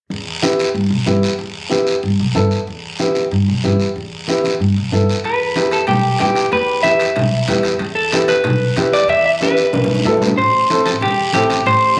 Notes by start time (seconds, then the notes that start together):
0.10 E2, long guiro
0.42 B3 E4 G4, high conga, short guiro
0.59 short guiro
0.74 G2, long guiro
0.90 B1
1.06 G2 B3 E4 G4, high conga, short guiro
1.23 short guiro
1.39 E2, long guiro
1.69 B3 E4 G4, high conga, short guiro
1.87 short guiro
2.03 G2, long guiro
2.20 B1
2.35 G2 B3 E4 A4, high conga, short guiro
2.51 short guiro
2.67 E2, long guiro
2.99 B3 E4 G4, high conga, short guiro
3.15 high conga, short guiro
3.31 G2, long guiro
3.48 B1
3.64 G2 B3 E4 G4, high conga, short guiro
3.80 short guiro
3.96 E2, long guiro
4.28 B3 E4 G4, high conga, short guiro
4.44 high conga, short guiro
4.60 G2, long guiro
4.77 B1
4.92 G2 B3 E4 A4, high conga, short guiro
5.09 short guiro
5.24 E2 B4, high timbale, long guiro
5.56 B3 E4 G4, high conga, high timbale, short guiro
5.71 A4, high timbale, short guiro
5.87 B1 G4, low conga, high timbale, long guiro
6.19 E2 B3 E4 G4, high conga, low conga, high timbale, short guiro
6.35 high timbale, short guiro
6.52 E2 B4, high timbale, long guiro
6.83 B3 E4 G4 E5, high conga, high timbale, short guiro
7.00 high timbale, short guiro
7.16 B1, low conga, high timbale, long guiro
7.48 E2 B3 E4 G4, high conga, low conga, high timbale, short guiro
7.63 high timbale, short guiro
7.79 E2, high timbale, long guiro
7.95 A4
8.12 B3 E4 G4, high conga, high timbale, short guiro
8.28 B4, high conga, high timbale, short guiro
8.44 B1, low conga, high timbale, long guiro
8.76 E2 B3 E4 G4, high conga, high timbale, short guiro
8.93 D5, high timbale, short guiro
9.08 E2 E5, high timbale, long guiro
9.26 E5
9.40 B3 E4 G4 B4, high conga, high timbale, short guiro
9.57 short guiro
9.73 B1, high conga, high timbale, long guiro
9.84 low conga
9.95 low conga
10.05 E2 B3 E4 A4, low timbale, short guiro
10.17 low conga
10.22 low timbale, short guiro
10.27 low conga
10.37 A1 C5, high timbale, long guiro
10.70 C4 E4 A4, high conga, high timbale, short guiro
10.85 A4, high conga, high timbale, short guiro
11.01 E2 G4, low conga, high timbale, long guiro
11.33 A1 C4 E4 G4 A4, high conga, high timbale, short guiro
11.50 high timbale, short guiro
11.66 A1 C5, high timbale, long guiro